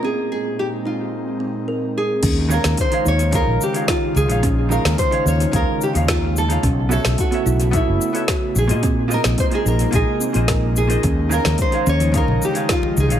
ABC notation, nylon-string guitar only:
X:1
M:4/4
L:1/16
Q:1/4=109
K:Bbdor
V:1 name="Nylon-string guitar"
A2 A2 G2 F6 z2 A2- | A2 B2 c2 d2 B2 G2 F2 A2- | A2 B2 c2 d2 B2 G2 F2 =A2- | =A2 A2 ^F4 =E4 z2 _A2- |
A2 B2 c A B2 A6 A2- | A2 B2 c2 d2 B2 G2 F2 A2 |]